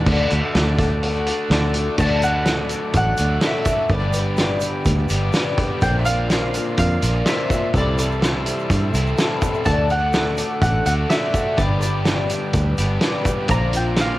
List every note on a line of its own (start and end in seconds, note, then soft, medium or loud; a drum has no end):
0.05 0.25 D2 medium
0.05 0.29 D3 medium
0.05 1.26 D3 medium
0.05 0.30 A3 medium
0.05 0.30 D4 medium
0.05 0.30 F#4 medium
0.05 1.96 A4 medium
0.05 0.28 A4 medium
0.05 1.96 F#5 medium
0.05 1.96 D6 medium
0.05 kick loud
0.05 crash loud
0.29 0.40 D2 medium
0.29 0.77 A3 medium
0.29 0.52 D4 medium
0.29 0.53 F#4 medium
0.29 0.54 A4 medium
0.29 closed hi-hat medium
0.53 1.30 D2 loud
0.53 0.77 A3 medium
0.53 0.78 D4 medium
0.53 1.26 D4 medium
0.53 0.78 F#4 medium
0.53 0.76 A4 medium
0.53 snare loud
0.53 closed hi-hat medium
0.77 1.73 A3 medium
0.77 1.49 D4 soft
0.77 1.50 F#4 medium
0.77 1.50 A4 medium
0.77 kick medium
0.77 closed hi-hat medium
1.03 1.98 F#4 medium
1.03 closed hi-hat loud
1.27 1.99 D4 medium
1.27 closed hi-hat medium
1.49 1.88 D2 medium
1.49 1.96 D3 medium
1.49 1.73 A3 medium
1.49 1.74 D4 medium
1.49 1.74 F#4 medium
1.49 1.72 A4 medium
1.49 snare loud
1.49 closed hi-hat loud
1.73 1.98 A3 medium
1.73 1.97 D4 soft
1.73 1.98 F#4 soft
1.73 1.98 A4 medium
1.73 closed hi-hat medium
1.97 2.74 D2 medium
1.97 3.17 D3 medium
1.97 2.22 D3 medium
1.97 3.17 F#3 medium
1.97 2.22 A3 medium
1.97 3.17 A3 medium
1.97 2.22 D4 medium
1.97 3.19 D4 medium
1.97 2.22 F#4 medium
1.97 3.16 F#4 medium
1.97 3.89 A4 medium
1.97 2.20 A4 medium
1.97 3.89 F#5 medium
1.97 2.23 A5 loud
1.97 5.79 D6 medium
1.97 kick loud
1.97 crash loud
1.97 shaker medium
2.21 2.44 D4 soft
2.21 2.46 F#4 soft
2.21 2.46 A4 medium
2.21 2.95 F#5 loud
2.21 closed hi-hat medium
2.21 shaker loud
2.44 2.69 A3 medium
2.44 2.70 D4 medium
2.44 2.69 F#4 medium
2.44 2.68 A4 medium
2.44 snare medium
2.44 closed hi-hat medium
2.44 shaker medium
2.69 3.41 D4 soft
2.69 3.41 F#4 soft
2.69 3.42 A4 medium
2.69 closed hi-hat medium
2.69 shaker medium
2.93 3.13 A1 medium
2.93 3.40 F#5 loud
2.93 kick medium
2.93 closed hi-hat medium
2.93 shaker medium
3.17 3.38 D2 medium
3.17 3.41 D3 medium
3.17 3.42 F#3 medium
3.17 3.42 A3 medium
3.17 3.44 D4 medium
3.17 3.41 F#4 medium
3.17 closed hi-hat medium
3.17 shaker loud
3.40 3.89 D3 medium
3.40 3.89 F#3 medium
3.40 3.65 A3 medium
3.40 3.66 D4 medium
3.40 3.66 F#4 medium
3.40 3.65 A4 medium
3.40 snare loud
3.40 closed hi-hat medium
3.40 shaker medium
3.44 3.90 A3 medium
3.44 3.93 D4 medium
3.44 3.90 F#4 medium
3.44 3.89 E5 medium
3.65 3.90 D4 soft
3.65 3.91 F#4 soft
3.65 3.90 A4 soft
3.65 kick medium
3.65 closed hi-hat medium
3.65 shaker medium
3.89 4.66 G1 medium
3.89 5.09 G2 medium
3.89 5.09 D3 medium
3.89 4.15 G3 medium
3.89 5.10 G3 medium
3.89 5.10 B3 medium
3.89 4.15 D4 medium
3.89 4.15 G4 medium
3.89 5.82 B4 medium
3.89 4.13 B4 medium
3.89 4.16 D5 medium
3.89 5.82 G5 medium
3.89 kick loud
3.89 closed hi-hat medium
3.89 shaker medium
3.93 5.10 D4 medium
3.93 5.09 G4 medium
4.13 4.37 D4 soft
4.13 4.38 G4 soft
4.13 4.38 B4 medium
4.13 closed hi-hat medium
4.13 shaker loud
4.18 5.57 D5 medium
4.37 4.62 G3 medium
4.37 4.62 D4 medium
4.37 4.62 G4 medium
4.37 4.61 B4 medium
4.37 snare medium
4.37 closed hi-hat medium
4.37 shaker medium
4.61 5.35 G4 soft
4.61 5.34 B4 medium
4.61 closed hi-hat medium
4.61 shaker medium
4.65 5.34 D4 soft
4.85 5.05 D2 medium
4.85 kick medium
4.85 closed hi-hat loud
4.85 shaker medium
5.09 5.29 G1 medium
5.09 5.34 G3 medium
5.09 5.34 B3 medium
5.09 5.33 D4 medium
5.09 5.33 G4 medium
5.09 closed hi-hat medium
5.09 shaker medium
5.13 5.32 G2 medium
5.13 5.34 D3 medium
5.33 5.81 G2 medium
5.33 5.81 D3 medium
5.33 5.58 G3 medium
5.33 5.82 G3 medium
5.33 5.82 B3 medium
5.33 5.59 D4 medium
5.33 5.82 D4 medium
5.33 5.59 G4 medium
5.33 5.82 G4 medium
5.33 5.58 B4 medium
5.33 snare loud
5.33 closed hi-hat loud
5.33 shaker medium
5.58 5.84 G4 medium
5.58 5.83 B4 medium
5.58 kick medium
5.58 closed hi-hat medium
5.62 5.83 D4 soft
5.81 6.58 A#1 medium
5.81 7.01 A#2 medium
5.81 6.07 A#2 medium
5.81 6.07 D3 medium
5.81 7.02 D3 medium
5.81 6.07 A#3 medium
5.81 7.02 A#3 medium
5.81 6.07 C4 medium
5.81 7.01 D4 loud
5.81 6.07 F4 medium
5.81 7.74 A#4 medium
5.81 6.06 C5 medium
5.81 7.74 D5 medium
5.81 5.99 G5 loud
5.81 9.63 C6 medium
5.81 kick loud
5.81 closed hi-hat medium
5.81 shaker medium
5.86 7.00 F4 medium
5.99 6.05 E5 medium
6.05 6.31 C4 soft
6.05 6.31 F4 soft
6.05 6.31 C5 medium
6.05 6.78 F5 loud
6.05 closed hi-hat medium
6.05 shaker loud
6.10 6.29 A#3 soft
6.30 6.55 A#3 medium
6.30 6.55 C4 medium
6.30 6.54 F4 medium
6.30 snare medium
6.30 closed hi-hat medium
6.30 shaker medium
6.34 6.53 C5 medium
6.54 7.25 A#3 soft
6.54 7.26 C4 soft
6.54 7.27 F4 soft
6.54 7.27 C5 medium
6.54 closed hi-hat medium
6.54 shaker loud
6.77 6.97 F2 medium
6.77 7.27 F5 loud
6.77 kick medium
6.77 closed hi-hat loud
6.77 shaker medium
7.02 7.22 A#1 medium
7.02 7.25 A#2 medium
7.02 7.26 D3 medium
7.02 7.26 A#3 medium
7.02 7.25 D4 medium
7.02 7.25 F4 medium
7.02 closed hi-hat medium
7.02 shaker medium
7.26 7.73 A#2 medium
7.26 7.74 D3 medium
7.26 7.50 A#3 medium
7.26 7.74 A#3 medium
7.26 7.51 C4 medium
7.26 7.75 D4 medium
7.26 7.51 F4 medium
7.26 7.49 C5 medium
7.26 7.72 E5 medium
7.26 snare loud
7.26 closed hi-hat medium
7.26 shaker medium
7.30 7.75 F4 medium
7.50 7.75 A#3 soft
7.50 7.75 C4 soft
7.50 7.75 F4 soft
7.50 7.75 C5 soft
7.50 kick medium
7.50 closed hi-hat medium
7.50 shaker loud
7.74 8.50 C2 medium
7.74 8.93 C3 medium
7.74 7.99 C3 medium
7.74 8.93 E3 medium
7.74 7.99 E3 medium
7.74 7.99 G3 medium
7.74 8.94 G3 loud
7.74 7.99 C4 medium
7.74 8.93 C4 loud
7.74 7.98 E4 medium
7.74 8.93 E4 loud
7.74 7.97 A4 medium
7.74 11.56 A4 medium
7.74 7.98 D5 medium
7.74 9.66 E5 soft
7.74 kick loud
7.74 closed hi-hat medium
7.74 shaker medium
7.98 8.19 G3 soft
7.98 8.21 C4 medium
7.98 8.21 E4 medium
7.98 8.22 A4 medium
7.98 9.39 D5 medium
7.98 closed hi-hat medium
7.98 shaker loud
8.11 shaker soft
8.20 8.46 G3 medium
8.20 8.46 C4 medium
8.20 8.45 E4 medium
8.20 8.44 A4 medium
8.20 snare medium
8.20 closed hi-hat medium
8.20 shaker medium
8.45 9.16 G3 soft
8.45 9.17 C4 soft
8.45 9.18 E4 medium
8.45 9.18 A4 medium
8.45 closed hi-hat medium
8.45 shaker loud
8.59 shaker soft
8.70 8.89 G2 medium
8.70 kick medium
8.70 closed hi-hat loud
8.70 shaker medium
8.94 9.13 C2 medium
8.94 9.16 C3 medium
8.94 9.17 E3 medium
8.94 9.18 G3 medium
8.94 9.17 C4 medium
8.94 9.17 E4 medium
8.94 closed hi-hat medium
8.94 shaker loud
9.06 shaker soft
9.17 9.65 C3 medium
9.17 9.65 E3 medium
9.17 9.42 G3 medium
9.17 9.66 G3 medium
9.17 9.41 C4 medium
9.17 9.66 C4 medium
9.17 9.40 E4 medium
9.17 9.66 E4 medium
9.17 9.39 A4 medium
9.17 snare loud
9.17 closed hi-hat loud
9.17 shaker medium
9.40 9.64 G3 soft
9.40 9.65 C4 soft
9.40 9.65 E4 medium
9.40 9.65 A4 medium
9.40 kick medium
9.40 closed hi-hat medium
9.40 shaker loud
9.54 shaker soft
9.63 10.42 D2 medium
9.63 9.89 D3 medium
9.63 10.85 D3 medium
9.63 9.90 A3 medium
9.63 10.85 A3 medium
9.63 9.90 D4 medium
9.63 9.90 F#4 medium
9.63 9.88 A4 medium
9.63 9.88 A5 loud
9.63 kick loud
9.63 closed hi-hat medium
9.63 shaker medium
9.68 10.87 D4 medium
9.68 10.85 F#4 medium
9.68 11.58 F#5 medium
9.68 14.19 D6 medium
9.90 10.13 D4 soft
9.90 10.14 F#4 soft
9.90 10.61 F#5 medium
9.90 closed hi-hat medium
9.90 shaker loud
10.13 10.38 A3 medium
10.13 10.38 D4 medium
10.13 10.36 F#4 medium
10.13 10.35 A4 medium
10.13 snare loud
10.13 closed hi-hat medium
10.13 shaker medium
10.36 11.09 D4 soft
10.36 11.10 F#4 soft
10.36 11.09 A4 medium
10.36 closed hi-hat medium
10.36 shaker medium
10.62 10.81 A1 medium
10.62 10.85 F#5 loud
10.62 kick medium
10.62 closed hi-hat loud
10.62 shaker medium
10.86 11.05 D2 medium
10.86 11.10 D3 medium
10.86 11.10 A3 medium
10.86 11.13 D4 medium
10.86 11.09 F#4 medium
10.86 10.92 F#5 medium
10.86 closed hi-hat medium
10.86 shaker medium
11.09 11.57 D3 medium
11.09 11.34 A3 medium
11.09 11.58 A3 medium
11.09 11.34 D4 medium
11.09 11.33 F#4 medium
11.09 11.31 A4 medium
11.09 11.60 E5 medium
11.09 snare loud
11.09 closed hi-hat medium
11.09 shaker medium
11.13 11.61 D4 medium
11.13 11.59 F#4 medium
11.32 11.56 D4 soft
11.32 11.58 F#4 soft
11.32 11.57 A4 medium
11.32 kick medium
11.32 closed hi-hat medium
11.32 shaker medium
11.56 12.34 G1 medium
11.56 12.77 G2 medium
11.56 12.77 D3 medium
11.56 11.81 G3 medium
11.56 12.78 G3 medium
11.56 11.82 D4 medium
11.56 11.81 G4 medium
11.56 11.79 B4 medium
11.56 13.48 B4 medium
11.56 11.79 D5 medium
11.56 13.48 G5 medium
11.56 kick loud
11.56 closed hi-hat medium
11.56 shaker medium
11.61 12.78 B3 medium
11.61 12.78 D4 loud
11.61 12.77 G4 loud
11.81 12.04 D4 soft
11.81 12.05 G4 medium
11.81 12.06 B4 medium
11.81 13.21 D5 medium
11.81 closed hi-hat medium
11.81 shaker loud
12.04 12.29 G3 medium
12.04 12.29 D4 medium
12.04 12.28 G4 medium
12.04 12.26 B4 medium
12.04 snare loud
12.04 closed hi-hat medium
12.04 shaker medium
12.27 13.00 D4 soft
12.27 13.01 G4 soft
12.27 13.01 B4 soft
12.27 closed hi-hat medium
12.27 shaker medium
12.53 12.73 D2 medium
12.53 kick loud
12.53 closed hi-hat medium
12.53 shaker medium
12.78 12.97 G1 medium
12.78 13.02 D3 medium
12.78 13.02 G3 medium
12.78 13.02 B3 medium
12.78 13.01 D4 medium
12.78 13.01 G4 medium
12.78 closed hi-hat medium
12.78 shaker medium
12.82 13.01 G2 medium
13.00 13.49 G2 medium
13.00 13.49 D3 medium
13.00 13.25 G3 medium
13.00 13.50 G3 medium
13.00 13.25 D4 medium
13.00 13.24 G4 medium
13.00 13.22 B4 medium
13.00 snare loud
13.00 closed hi-hat medium
13.00 shaker medium
13.05 13.50 B3 medium
13.05 13.50 D4 medium
13.05 13.50 G4 medium
13.24 13.49 D4 soft
13.24 13.49 G4 medium
13.24 13.49 B4 medium
13.24 kick medium
13.24 closed hi-hat medium
13.24 shaker medium
13.48 14.19 A#1 medium
13.48 13.73 A#2 medium
13.48 14.19 A#2 medium
13.48 13.73 D3 medium
13.48 14.19 D3 medium
13.48 13.73 A#3 medium
13.48 14.19 A#3 medium
13.48 13.72 C4 medium
13.48 13.72 F4 medium
13.48 13.70 C5 medium
13.48 14.19 C5 medium
13.48 13.73 A#5 loud
13.48 14.19 A#5 medium
13.48 kick loud
13.48 closed hi-hat medium
13.48 shaker medium
13.53 14.19 D4 loud
13.53 14.19 F4 loud
13.71 13.95 A#3 soft
13.71 13.96 C4 medium
13.71 13.97 F4 medium
13.71 13.97 C5 soft
13.71 closed hi-hat medium
13.71 shaker medium
13.76 14.00 G5 medium
13.96 14.19 A#3 medium
13.96 14.19 C4 medium
13.96 14.19 F4 medium
13.96 14.19 C5 medium
13.96 snare loud
13.96 closed hi-hat medium
13.96 shaker medium
14.00 14.19 F5 loud